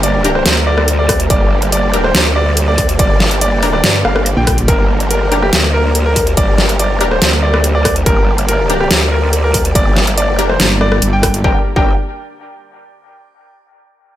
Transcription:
Already playing: G1 D3 G3 A#3 G4 A#4
0.03 D5, closed hi-hat
0.24 D4 G4 A#4, closed hi-hat
0.35 C5, cross-stick
0.46 D2, snare, closed hi-hat
0.67 D5
0.78 cross-stick
0.88 closed hi-hat
0.99 D5
1.09 kick, cross-stick, open hi-hat
1.20 closed hi-hat
1.30 G1 D5, kick, closed hi-hat
1.62 closed hi-hat
1.72 D5, closed hi-hat
1.93 D4 G4 A#4, closed hi-hat
2.04 C5, cross-stick
2.15 D2, snare, closed hi-hat
2.36 D5
2.57 closed hi-hat
2.68 D5
2.78 kick, open hi-hat
2.89 closed hi-hat
2.99 G1 D5, kick, closed hi-hat
3.20 snare
3.31 closed hi-hat
3.41 D5, closed hi-hat
3.62 D4 G4 A#4, open hi-hat
3.73 D5, cross-stick
3.84 G2, snare, closed hi-hat
4.05 G1 F5, cross-stick
4.16 cross-stick
4.26 closed hi-hat
4.37 A#1 G5
4.47 kick, cross-stick, open hi-hat
4.58 closed hi-hat
4.68 G1 A#4, kick, closed hi-hat
5.00 closed hi-hat
5.11 A#4, closed hi-hat
5.27 F#1
5.32 D4 G4 A#4, closed hi-hat
5.42 G4, cross-stick
5.53 D2, snare, closed hi-hat
5.74 A#4
5.95 closed hi-hat
6.06 A#4
6.16 kick, open hi-hat
6.27 closed hi-hat
6.37 G1 D5, kick, closed hi-hat
6.58 snare
6.69 closed hi-hat
6.79 D5, closed hi-hat
7.00 D4 G4 A#4, closed hi-hat
7.11 C5, cross-stick
7.22 D2, snare, closed hi-hat
7.43 D5
7.54 cross-stick
7.64 closed hi-hat
7.75 D5
7.85 kick, cross-stick, open hi-hat
7.96 closed hi-hat
8.06 G1 A#4 D5, kick, closed hi-hat
8.38 closed hi-hat
8.48 A#4, closed hi-hat
8.70 D4 G4 A#4, closed hi-hat
8.80 G4, cross-stick
8.91 D2, snare, closed hi-hat
9.12 A#4
9.33 closed hi-hat
9.44 A#4
9.54 kick, open hi-hat
9.65 closed hi-hat
9.75 G1 D5, kick, closed hi-hat
9.96 snare
10.07 closed hi-hat
10.18 D5, closed hi-hat
10.34 F#1
10.39 D4 G4 A#4, closed hi-hat
10.49 C5, cross-stick
10.60 G1, snare, closed hi-hat
10.81 D5, cross-stick
10.92 cross-stick
11.02 G1, closed hi-hat
11.13 G5
11.23 kick, cross-stick, open hi-hat
11.34 closed hi-hat
11.44 G1 D3 G3 A#3 D4 G4 A#4 G5, kick
11.76 G1 D4 G4 A#4 G5, kick

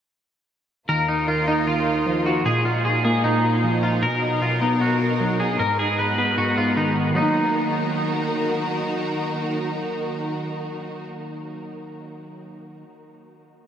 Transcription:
0.89 D#2 D#3 A#3 F4 A#4
1.08 D#3 D#4
1.28 D#3 F4
1.48 D#4
1.67 D#3 F4
1.87 D#3
2.06 F3
2.26 F3 F#4
2.46 A#2 F3 G#3 D#4 G#4
2.65 A#2 F4
2.85 A#2 G#4
3.05 A#3 G#4
3.24 A#2 D#4
3.44 A#2
3.64 F3
3.83 F3 F4
4.03 B2 F#3 A#4
4.22 B2 D#4
4.41 B2 F4
4.61 B3 D#4
4.80 B2 F#4
5.01 B2
5.21 F#3
5.40 F#3 G#4
5.59 G#2 G#3 B3 A#4
5.79 G#2 G#4
5.99 G#2 B4
6.18 B3 B4
6.38 G#2 F#4
6.57 G#2 F4
6.77 D#3 D#4
6.97 D#3
7.10 D#3 F#3
7.16 D#3 A#3 D#4 F#4 A#4
7.22 D#4

